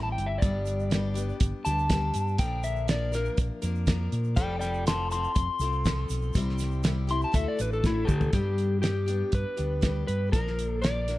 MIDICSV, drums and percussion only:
0, 0, Header, 1, 2, 480
1, 0, Start_track
1, 0, Tempo, 495050
1, 411, Time_signature, 4, 2, 24, 8
1, 10845, End_track
2, 0, Start_track
2, 0, Title_t, "Drums"
2, 176, Note_on_c, 9, 42, 62
2, 273, Note_off_c, 9, 42, 0
2, 409, Note_on_c, 9, 82, 71
2, 411, Note_on_c, 9, 36, 118
2, 412, Note_on_c, 9, 42, 93
2, 506, Note_off_c, 9, 82, 0
2, 508, Note_off_c, 9, 36, 0
2, 509, Note_off_c, 9, 42, 0
2, 639, Note_on_c, 9, 82, 86
2, 652, Note_on_c, 9, 42, 66
2, 736, Note_off_c, 9, 82, 0
2, 749, Note_off_c, 9, 42, 0
2, 772, Note_on_c, 9, 82, 30
2, 869, Note_off_c, 9, 82, 0
2, 885, Note_on_c, 9, 42, 86
2, 892, Note_on_c, 9, 82, 81
2, 894, Note_on_c, 9, 38, 104
2, 982, Note_off_c, 9, 42, 0
2, 989, Note_off_c, 9, 82, 0
2, 991, Note_off_c, 9, 38, 0
2, 1120, Note_on_c, 9, 42, 67
2, 1134, Note_on_c, 9, 82, 99
2, 1217, Note_off_c, 9, 42, 0
2, 1231, Note_off_c, 9, 82, 0
2, 1253, Note_on_c, 9, 82, 24
2, 1350, Note_off_c, 9, 82, 0
2, 1358, Note_on_c, 9, 42, 96
2, 1365, Note_on_c, 9, 36, 109
2, 1371, Note_on_c, 9, 82, 73
2, 1455, Note_off_c, 9, 42, 0
2, 1461, Note_off_c, 9, 36, 0
2, 1467, Note_off_c, 9, 82, 0
2, 1602, Note_on_c, 9, 42, 67
2, 1610, Note_on_c, 9, 82, 99
2, 1699, Note_off_c, 9, 42, 0
2, 1707, Note_off_c, 9, 82, 0
2, 1731, Note_on_c, 9, 82, 27
2, 1828, Note_off_c, 9, 82, 0
2, 1837, Note_on_c, 9, 42, 93
2, 1842, Note_on_c, 9, 36, 81
2, 1846, Note_on_c, 9, 38, 101
2, 1847, Note_on_c, 9, 82, 75
2, 1934, Note_off_c, 9, 42, 0
2, 1939, Note_off_c, 9, 36, 0
2, 1943, Note_off_c, 9, 38, 0
2, 1944, Note_off_c, 9, 82, 0
2, 2072, Note_on_c, 9, 42, 72
2, 2084, Note_on_c, 9, 82, 95
2, 2169, Note_off_c, 9, 42, 0
2, 2181, Note_off_c, 9, 82, 0
2, 2201, Note_on_c, 9, 82, 28
2, 2298, Note_off_c, 9, 82, 0
2, 2312, Note_on_c, 9, 42, 96
2, 2319, Note_on_c, 9, 36, 112
2, 2320, Note_on_c, 9, 82, 70
2, 2409, Note_off_c, 9, 42, 0
2, 2416, Note_off_c, 9, 36, 0
2, 2417, Note_off_c, 9, 82, 0
2, 2556, Note_on_c, 9, 42, 67
2, 2557, Note_on_c, 9, 82, 80
2, 2653, Note_off_c, 9, 42, 0
2, 2654, Note_off_c, 9, 82, 0
2, 2675, Note_on_c, 9, 82, 27
2, 2772, Note_off_c, 9, 82, 0
2, 2794, Note_on_c, 9, 42, 87
2, 2797, Note_on_c, 9, 82, 76
2, 2803, Note_on_c, 9, 38, 102
2, 2891, Note_off_c, 9, 42, 0
2, 2894, Note_off_c, 9, 82, 0
2, 2900, Note_off_c, 9, 38, 0
2, 3035, Note_on_c, 9, 82, 98
2, 3042, Note_on_c, 9, 42, 67
2, 3051, Note_on_c, 9, 38, 33
2, 3132, Note_off_c, 9, 82, 0
2, 3139, Note_off_c, 9, 42, 0
2, 3148, Note_off_c, 9, 38, 0
2, 3152, Note_on_c, 9, 82, 27
2, 3249, Note_off_c, 9, 82, 0
2, 3272, Note_on_c, 9, 42, 80
2, 3276, Note_on_c, 9, 82, 69
2, 3277, Note_on_c, 9, 36, 104
2, 3369, Note_off_c, 9, 42, 0
2, 3373, Note_off_c, 9, 82, 0
2, 3374, Note_off_c, 9, 36, 0
2, 3511, Note_on_c, 9, 42, 70
2, 3517, Note_on_c, 9, 82, 95
2, 3608, Note_off_c, 9, 42, 0
2, 3614, Note_off_c, 9, 82, 0
2, 3638, Note_on_c, 9, 82, 27
2, 3735, Note_off_c, 9, 82, 0
2, 3750, Note_on_c, 9, 82, 71
2, 3753, Note_on_c, 9, 42, 92
2, 3756, Note_on_c, 9, 36, 85
2, 3762, Note_on_c, 9, 38, 101
2, 3847, Note_off_c, 9, 82, 0
2, 3850, Note_off_c, 9, 42, 0
2, 3853, Note_off_c, 9, 36, 0
2, 3859, Note_off_c, 9, 38, 0
2, 3997, Note_on_c, 9, 42, 64
2, 4094, Note_off_c, 9, 42, 0
2, 4112, Note_on_c, 9, 82, 28
2, 4209, Note_off_c, 9, 82, 0
2, 4228, Note_on_c, 9, 82, 65
2, 4237, Note_on_c, 9, 36, 123
2, 4237, Note_on_c, 9, 42, 102
2, 4325, Note_off_c, 9, 82, 0
2, 4334, Note_off_c, 9, 36, 0
2, 4334, Note_off_c, 9, 42, 0
2, 4473, Note_on_c, 9, 82, 95
2, 4476, Note_on_c, 9, 42, 60
2, 4485, Note_on_c, 9, 38, 30
2, 4570, Note_off_c, 9, 82, 0
2, 4573, Note_off_c, 9, 42, 0
2, 4582, Note_off_c, 9, 38, 0
2, 4594, Note_on_c, 9, 82, 28
2, 4691, Note_off_c, 9, 82, 0
2, 4721, Note_on_c, 9, 42, 92
2, 4722, Note_on_c, 9, 82, 86
2, 4730, Note_on_c, 9, 38, 104
2, 4818, Note_off_c, 9, 42, 0
2, 4819, Note_off_c, 9, 82, 0
2, 4826, Note_off_c, 9, 38, 0
2, 4958, Note_on_c, 9, 82, 104
2, 4964, Note_on_c, 9, 42, 64
2, 5055, Note_off_c, 9, 82, 0
2, 5061, Note_off_c, 9, 42, 0
2, 5078, Note_on_c, 9, 82, 28
2, 5175, Note_off_c, 9, 82, 0
2, 5193, Note_on_c, 9, 82, 75
2, 5194, Note_on_c, 9, 42, 81
2, 5198, Note_on_c, 9, 36, 108
2, 5290, Note_off_c, 9, 82, 0
2, 5291, Note_off_c, 9, 42, 0
2, 5294, Note_off_c, 9, 36, 0
2, 5426, Note_on_c, 9, 82, 99
2, 5445, Note_on_c, 9, 42, 71
2, 5523, Note_off_c, 9, 82, 0
2, 5542, Note_off_c, 9, 42, 0
2, 5549, Note_on_c, 9, 82, 27
2, 5646, Note_off_c, 9, 82, 0
2, 5672, Note_on_c, 9, 82, 89
2, 5678, Note_on_c, 9, 36, 86
2, 5680, Note_on_c, 9, 42, 90
2, 5688, Note_on_c, 9, 38, 108
2, 5769, Note_off_c, 9, 82, 0
2, 5775, Note_off_c, 9, 36, 0
2, 5777, Note_off_c, 9, 42, 0
2, 5785, Note_off_c, 9, 38, 0
2, 5908, Note_on_c, 9, 82, 98
2, 5921, Note_on_c, 9, 42, 67
2, 6005, Note_off_c, 9, 82, 0
2, 6018, Note_off_c, 9, 42, 0
2, 6028, Note_on_c, 9, 82, 32
2, 6125, Note_off_c, 9, 82, 0
2, 6140, Note_on_c, 9, 82, 81
2, 6159, Note_on_c, 9, 36, 116
2, 6162, Note_on_c, 9, 42, 110
2, 6237, Note_off_c, 9, 82, 0
2, 6256, Note_off_c, 9, 36, 0
2, 6259, Note_off_c, 9, 42, 0
2, 6294, Note_on_c, 9, 38, 36
2, 6384, Note_on_c, 9, 82, 110
2, 6391, Note_off_c, 9, 38, 0
2, 6401, Note_on_c, 9, 42, 71
2, 6410, Note_on_c, 9, 38, 29
2, 6481, Note_off_c, 9, 82, 0
2, 6498, Note_off_c, 9, 42, 0
2, 6507, Note_off_c, 9, 38, 0
2, 6508, Note_on_c, 9, 82, 32
2, 6605, Note_off_c, 9, 82, 0
2, 6626, Note_on_c, 9, 82, 91
2, 6631, Note_on_c, 9, 42, 91
2, 6639, Note_on_c, 9, 38, 112
2, 6723, Note_off_c, 9, 82, 0
2, 6727, Note_off_c, 9, 42, 0
2, 6736, Note_off_c, 9, 38, 0
2, 6872, Note_on_c, 9, 42, 72
2, 6969, Note_off_c, 9, 42, 0
2, 6995, Note_on_c, 9, 82, 30
2, 7092, Note_off_c, 9, 82, 0
2, 7117, Note_on_c, 9, 36, 105
2, 7118, Note_on_c, 9, 42, 93
2, 7119, Note_on_c, 9, 82, 79
2, 7214, Note_off_c, 9, 36, 0
2, 7215, Note_off_c, 9, 42, 0
2, 7216, Note_off_c, 9, 82, 0
2, 7356, Note_on_c, 9, 42, 65
2, 7363, Note_on_c, 9, 82, 109
2, 7453, Note_off_c, 9, 42, 0
2, 7460, Note_off_c, 9, 82, 0
2, 7491, Note_on_c, 9, 82, 29
2, 7588, Note_off_c, 9, 82, 0
2, 7600, Note_on_c, 9, 36, 78
2, 7603, Note_on_c, 9, 82, 77
2, 7604, Note_on_c, 9, 38, 59
2, 7697, Note_off_c, 9, 36, 0
2, 7700, Note_off_c, 9, 82, 0
2, 7701, Note_off_c, 9, 38, 0
2, 7839, Note_on_c, 9, 82, 85
2, 7841, Note_on_c, 9, 36, 81
2, 7935, Note_off_c, 9, 82, 0
2, 7938, Note_off_c, 9, 36, 0
2, 7959, Note_on_c, 9, 43, 84
2, 7963, Note_on_c, 9, 82, 28
2, 8056, Note_off_c, 9, 43, 0
2, 8060, Note_off_c, 9, 82, 0
2, 8074, Note_on_c, 9, 42, 86
2, 8079, Note_on_c, 9, 36, 117
2, 8171, Note_off_c, 9, 42, 0
2, 8176, Note_off_c, 9, 36, 0
2, 8320, Note_on_c, 9, 42, 57
2, 8417, Note_off_c, 9, 42, 0
2, 8560, Note_on_c, 9, 42, 81
2, 8569, Note_on_c, 9, 38, 93
2, 8657, Note_off_c, 9, 42, 0
2, 8666, Note_off_c, 9, 38, 0
2, 8802, Note_on_c, 9, 42, 64
2, 8899, Note_off_c, 9, 42, 0
2, 9037, Note_on_c, 9, 42, 79
2, 9046, Note_on_c, 9, 36, 96
2, 9134, Note_off_c, 9, 42, 0
2, 9143, Note_off_c, 9, 36, 0
2, 9283, Note_on_c, 9, 42, 65
2, 9380, Note_off_c, 9, 42, 0
2, 9524, Note_on_c, 9, 42, 89
2, 9530, Note_on_c, 9, 36, 77
2, 9533, Note_on_c, 9, 38, 98
2, 9621, Note_off_c, 9, 42, 0
2, 9626, Note_off_c, 9, 36, 0
2, 9630, Note_off_c, 9, 38, 0
2, 9775, Note_on_c, 9, 42, 63
2, 9872, Note_off_c, 9, 42, 0
2, 10017, Note_on_c, 9, 36, 111
2, 10018, Note_on_c, 9, 42, 96
2, 10114, Note_off_c, 9, 36, 0
2, 10115, Note_off_c, 9, 42, 0
2, 10153, Note_on_c, 9, 38, 33
2, 10250, Note_off_c, 9, 38, 0
2, 10265, Note_on_c, 9, 42, 69
2, 10362, Note_off_c, 9, 42, 0
2, 10507, Note_on_c, 9, 42, 85
2, 10516, Note_on_c, 9, 38, 93
2, 10604, Note_off_c, 9, 42, 0
2, 10613, Note_off_c, 9, 38, 0
2, 10742, Note_on_c, 9, 42, 63
2, 10751, Note_on_c, 9, 38, 30
2, 10839, Note_off_c, 9, 42, 0
2, 10845, Note_off_c, 9, 38, 0
2, 10845, End_track
0, 0, End_of_file